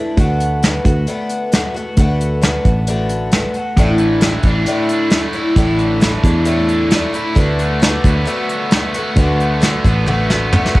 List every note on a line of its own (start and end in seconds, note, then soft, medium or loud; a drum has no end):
0.00 0.17 A3 soft
0.00 0.19 D4 soft
0.00 0.18 E4 medium
0.17 0.78 D2 medium
0.17 0.62 D3 medium
0.17 0.64 A3 medium
0.17 0.64 B3 medium
0.17 0.64 F#4 medium
0.17 kick medium
0.17 closed hi-hat medium
0.40 closed hi-hat medium
0.62 0.85 D3 medium
0.62 0.86 A3 medium
0.62 0.85 B3 medium
0.62 0.84 F#4 medium
0.62 snare medium
0.62 closed hi-hat medium
0.85 1.05 D2 medium
0.85 1.07 A3 soft
0.85 1.08 B3 soft
0.85 1.08 F#4 soft
0.85 kick medium
0.85 closed hi-hat medium
1.07 1.50 D3 medium
1.07 1.53 A3 medium
1.07 1.53 B3 medium
1.07 1.54 F#4 medium
1.07 closed hi-hat medium
1.30 closed hi-hat medium
1.52 1.75 D3 medium
1.52 1.75 A3 medium
1.52 1.75 B3 medium
1.52 1.73 F#4 medium
1.52 snare loud
1.52 closed hi-hat medium
1.74 1.97 A3 soft
1.74 1.98 B3 soft
1.74 1.97 F#4 soft
1.74 closed hi-hat medium
1.97 2.58 D2 medium
1.97 2.40 D3 medium
1.97 2.42 A3 medium
1.97 2.42 B3 medium
1.97 2.44 F#4 medium
1.97 kick loud
1.97 closed hi-hat medium
2.21 closed hi-hat medium
2.42 2.87 D3 medium
2.42 2.88 A3 medium
2.42 2.88 B3 medium
2.42 2.88 F#4 medium
2.42 snare loud
2.42 closed hi-hat medium
2.65 3.46 A1 medium
2.65 kick medium
2.65 closed hi-hat medium
2.87 3.32 D3 medium
2.87 3.34 A3 medium
2.87 3.34 B3 medium
2.87 3.34 F#4 medium
2.87 closed hi-hat medium
3.09 closed hi-hat medium
3.32 3.55 D3 medium
3.32 3.56 A3 medium
3.32 3.56 B3 medium
3.32 snare loud
3.32 closed hi-hat medium
3.36 3.55 F#4 medium
3.54 3.78 F#4 medium
3.54 closed hi-hat soft
3.58 3.77 A3 soft
3.58 3.79 B3 soft
3.76 4.38 A1 medium
3.76 4.23 A2 medium
3.76 4.20 D3 medium
3.76 4.22 A3 medium
3.76 4.24 D4 medium
3.76 4.23 E4 medium
3.76 kick medium
3.76 closed hi-hat medium
3.98 4.22 E3 medium
3.98 closed hi-hat medium
4.21 4.45 D3 medium
4.21 5.36 E3 medium
4.21 4.45 A3 medium
4.21 4.45 D4 medium
4.21 4.43 E4 medium
4.21 snare medium
4.21 closed hi-hat medium
4.43 4.64 A1 medium
4.43 4.67 D4 soft
4.43 4.67 E4 soft
4.43 kick medium
4.43 closed hi-hat medium
4.47 4.66 A3 soft
4.66 5.12 A2 medium
4.66 5.10 D3 medium
4.66 5.12 A3 medium
4.66 5.13 D4 medium
4.66 5.13 E4 medium
4.66 closed hi-hat medium
4.89 6.05 D4 medium
4.89 closed hi-hat medium
5.10 5.34 D3 medium
5.10 5.35 A3 medium
5.10 5.33 D4 medium
5.10 5.32 E4 medium
5.10 snare loud
5.10 closed hi-hat medium
5.33 5.57 D4 medium
5.33 5.57 E4 medium
5.33 closed hi-hat medium
5.37 5.57 A3 soft
5.56 6.17 A1 medium
5.56 6.02 A2 medium
5.56 5.99 D3 medium
5.56 6.01 A3 medium
5.56 6.02 D4 medium
5.56 6.02 E4 medium
5.56 kick medium
5.56 closed hi-hat medium
5.79 6.01 E3 medium
5.79 closed hi-hat medium
6.00 6.24 D3 medium
6.00 7.15 E3 medium
6.00 6.25 A3 medium
6.00 6.24 D4 medium
6.00 6.24 E4 medium
6.00 snare loud
6.00 closed hi-hat medium
6.24 7.05 E2 medium
6.24 6.45 D4 soft
6.24 6.46 E4 soft
6.24 kick medium
6.24 closed hi-hat medium
6.28 6.45 A3 soft
6.45 6.92 A2 medium
6.45 6.90 D3 medium
6.45 6.92 A3 medium
6.45 6.93 D4 medium
6.45 6.92 E4 medium
6.45 closed hi-hat medium
6.68 8.05 D4 medium
6.68 closed hi-hat medium
6.90 7.15 D3 medium
6.90 7.15 A3 medium
6.90 7.13 D4 medium
6.90 snare loud
6.90 closed hi-hat medium
6.95 7.12 E4 medium
7.13 7.35 A3 soft
7.13 7.37 D4 soft
7.13 7.37 E4 medium
7.13 closed hi-hat medium
7.35 7.98 D2 medium
7.35 7.79 D3 medium
7.35 7.81 A3 medium
7.35 7.81 B3 medium
7.35 7.82 F#4 medium
7.35 kick medium
7.35 closed hi-hat medium
7.59 8.27 A3 medium
7.59 closed hi-hat medium
7.80 8.04 D3 medium
7.80 8.05 A3 medium
7.80 8.04 B3 medium
7.80 8.02 F#4 medium
7.80 snare medium
7.80 closed hi-hat medium
8.04 8.25 D2 medium
8.04 8.25 A3 soft
8.04 8.26 B3 soft
8.04 8.27 F#4 soft
8.04 kick medium
8.04 closed hi-hat medium
8.25 8.72 D3 medium
8.25 8.72 A3 medium
8.25 8.74 B3 medium
8.25 8.73 F#4 medium
8.25 closed hi-hat medium
8.49 9.64 B3 medium
8.49 closed hi-hat medium
8.71 8.96 D3 medium
8.71 8.96 A3 medium
8.71 8.95 B3 medium
8.71 snare loud
8.71 closed hi-hat medium
8.76 8.93 F#4 medium
8.94 9.16 A3 soft
8.94 9.17 B3 soft
8.94 9.18 F#4 medium
8.94 closed hi-hat medium
9.16 9.78 D2 medium
9.16 9.59 D3 medium
9.16 9.61 A3 medium
9.16 9.62 B3 medium
9.16 9.62 F#4 medium
9.16 kick loud
9.16 closed hi-hat medium
9.40 10.09 A3 medium
9.40 closed hi-hat medium
9.60 9.85 D3 medium
9.60 9.85 A3 medium
9.60 9.85 B3 medium
9.60 9.83 F#4 medium
9.60 snare medium
9.60 closed hi-hat medium
9.65 10.77 D3 medium
9.84 10.66 A1 medium
9.84 10.06 A3 soft
9.84 10.06 B3 soft
9.84 10.07 F#4 soft
9.84 kick medium
9.84 closed hi-hat medium
10.06 10.51 D3 medium
10.06 10.53 A3 medium
10.06 10.53 B3 medium
10.06 10.53 F#4 medium
10.06 high tom soft
10.30 10.80 B3 medium
10.30 snare medium
10.53 10.76 D3 medium
10.53 10.76 A3 medium
10.53 10.75 B3 medium
10.53 10.73 F#4 medium
10.53 mid tom medium
10.66 snare medium
10.74 10.80 B3 soft
10.74 10.80 F#4 medium
10.74 kick medium